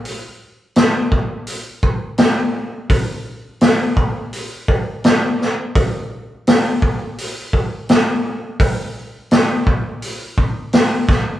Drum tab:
HH |o-o-o-o-|o-o-o-o-|o-o-o-o-|o-o-o-o-|
SD |--o---o-|--o---oo|--o---o-|--o---oo|
BD |---o-o--|o--o-o--|o--o-o--|o--o-o-o|